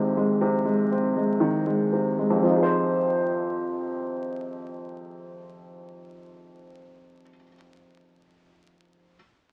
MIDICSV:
0, 0, Header, 1, 2, 480
1, 0, Start_track
1, 0, Key_signature, -4, "minor"
1, 0, Tempo, 988468
1, 679, Tempo, 1039861
1, 1158, Time_signature, 4, 2, 24, 8
1, 1159, Tempo, 1054482
1, 4385, End_track
2, 0, Start_track
2, 0, Title_t, "Upright piano"
2, 0, Program_c, 0, 0
2, 0, Control_c, 0, 64, 127
2, 0, Note_on_c, 0, 41, 61
2, 0, Note_on_c, 0, 48, 53
2, 0, Note_on_c, 0, 51, 56
2, 0, Note_on_c, 0, 56, 52
2, 0, Note_on_c, 0, 60, 55
2, 76, Note_off_c, 0, 56, 0
2, 83, Note_on_c, 0, 56, 53
2, 193, Note_off_c, 0, 48, 0
2, 200, Note_on_c, 0, 48, 64
2, 310, Note_off_c, 0, 56, 0
2, 317, Note_on_c, 0, 56, 53
2, 419, Note_off_c, 0, 60, 0
2, 445, Note_on_c, 0, 60, 53
2, 558, Note_off_c, 0, 56, 0
2, 565, Note_on_c, 0, 56, 49
2, 660, Note_off_c, 0, 51, 0
2, 681, Note_on_c, 0, 51, 52
2, 794, Note_off_c, 0, 56, 0
2, 801, Note_on_c, 0, 56, 50
2, 916, Note_off_c, 0, 48, 0
2, 923, Note_on_c, 0, 48, 49
2, 1036, Note_off_c, 0, 56, 0
2, 1043, Note_on_c, 0, 56, 50
2, 1088, Note_off_c, 0, 41, 0
2, 1095, Note_on_c, 0, 41, 53
2, 1117, Note_off_c, 0, 48, 0
2, 1124, Note_on_c, 0, 48, 49
2, 1145, Note_off_c, 0, 51, 0
2, 1146, Note_off_c, 0, 60, 0
2, 1155, Note_on_c, 0, 53, 46
2, 1158, Note_off_c, 0, 56, 0
2, 1165, Control_c, 0, 64, 0
2, 1185, Note_on_c, 0, 63, 48
2, 1215, Note_on_c, 0, 68, 45
2, 1238, Control_c, 0, 64, 127
2, 1245, Note_on_c, 0, 72, 55
2, 3334, Note_off_c, 0, 41, 0
2, 3362, Note_off_c, 0, 48, 0
2, 3393, Note_off_c, 0, 53, 0
2, 3423, Note_off_c, 0, 63, 0
2, 3453, Note_off_c, 0, 68, 0
2, 3483, Note_off_c, 0, 72, 0
2, 4219, Control_c, 0, 64, 0
2, 4385, End_track
0, 0, End_of_file